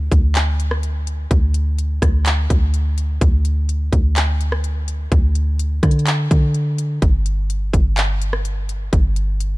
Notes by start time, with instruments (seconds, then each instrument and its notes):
0.12 808-style bass D2, kick, closed hi-hat
0.35 clap, closed hi-hat
0.60 closed hi-hat
0.71 cross-stick
0.83 closed hi-hat
1.07 closed hi-hat
1.31 808-style bass D2, kick, closed hi-hat
1.54 closed hi-hat
1.79 closed hi-hat
2.02 808-style bass D2, kick, cross-stick, closed hi-hat
2.26 clap, closed hi-hat
2.50 808-style bass D2, kick, closed hi-hat
2.74 closed hi-hat
2.98 closed hi-hat
3.21 808-style bass D2, kick, closed hi-hat
3.45 closed hi-hat
3.69 closed hi-hat
3.92 808-style bass D2, kick, closed hi-hat
4.16 clap, closed hi-hat
4.41 closed hi-hat
4.52 cross-stick
4.64 closed hi-hat
4.88 closed hi-hat
5.12 808-style bass D2, kick, closed hi-hat
5.35 closed hi-hat
5.59 closed hi-hat
5.83 808-style bass D3, kick, cross-stick, closed hi-hat
5.91 closed hi-hat
5.99 closed hi-hat
6.07 clap, closed hi-hat
6.31 808-style bass D3, kick, closed hi-hat
6.54 closed hi-hat
6.78 closed hi-hat
7.02 808-style bass G1, kick, closed hi-hat
7.26 closed hi-hat
7.50 closed hi-hat
7.73 808-style bass G1, kick, closed hi-hat
7.97 clap, closed hi-hat
8.22 closed hi-hat
8.33 cross-stick
8.45 closed hi-hat
8.69 closed hi-hat
8.93 808-style bass G1, kick, closed hi-hat
9.16 closed hi-hat
9.40 closed hi-hat